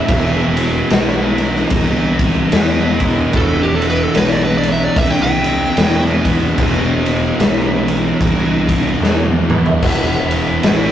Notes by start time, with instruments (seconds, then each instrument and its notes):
Already playing: distorted electric guitar E3, lead electric guitar E5
0.07 picked electric bass E1, distorted electric guitar E2 B2, kick, ride
0.11 distorted electric guitar E3
0.57 ride
0.90 picked electric bass B1, snare, ride
1.38 ride
1.56 snare
1.70 picked electric bass C2, kick, ride
2.18 distorted electric guitar B2 E3, kick, ride
2.22 distorted electric guitar E2
2.50 distorted electric guitar E2 B2 E3, picked electric bass E2, snare, ride
3.00 overdriven electric guitar E2 B2 E3, kick, ride
3.33 picked electric bass E1, distorted electric guitar E2 B2 E3, lead electric guitar A4, kick, ride
3.63 lead electric guitar G4
3.75 lead electric guitar A4
3.82 ride
3.90 lead electric guitar B4
4.03 lead electric guitar A4
4.15 picked electric bass B1, lead electric guitar B4, snare, ride
4.29 lead electric guitar D5
4.45 lead electric guitar B4
4.58 lead electric guitar D5
4.63 ride
4.72 lead electric guitar E5
4.84 lead electric guitar D5
4.96 picked electric bass C2, lead electric guitar E5, kick, ride
5.10 lead electric guitar G5
5.23 lead electric guitar G5
5.43 distorted electric guitar E2 B2 E3, ride
5.75 distorted electric guitar E2 B2 E3, picked electric bass E2, snare, ride
6.02 snare
6.25 overdriven electric guitar E2 B2 E3, kick, ride
6.56 picked electric bass E1, distorted electric guitar E2 B2 E3, kick, ride
7.06 ride
7.39 picked electric bass B1, snare, ride
7.88 ride
8.21 picked electric bass C2, kick, ride
8.67 distorted electric guitar E2 B2 E3, kick, ride
9.00 picked electric bass E2, distorted electric guitar E2 B2, snare
9.04 distorted electric guitar E3
9.26 high tom
9.49 overdriven electric guitar E2 B2 E3, mid tom
9.66 floor tom
9.81 picked electric bass E1, distorted electric guitar E2 B2 E3, kick, crash
10.31 ride
10.63 picked electric bass A1, snare, ride